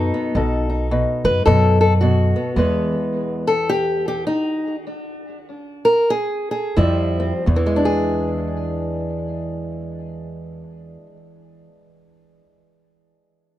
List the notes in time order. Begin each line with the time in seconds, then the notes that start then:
Already playing: B2 F#3 B3 D#4 A4
0.14 B3
0.35 B1 B2 A4
0.70 D#4
0.91 B2
1.24 F#2 B4
1.46 F#2 B2 A4
1.81 A4
2.01 B2 F#4
2.36 B3
2.56 E2 G#3 B3 B4
3.47 A4
3.69 G4
4.08 G4
4.27 D#4
5.85 A#4
6.10 G#4
6.51 G#4
6.77 F2 F3 G3 C4 E4
7.20 C4
7.46 E2
7.56 E3
7.66 G#3
7.76 D4
7.85 G#4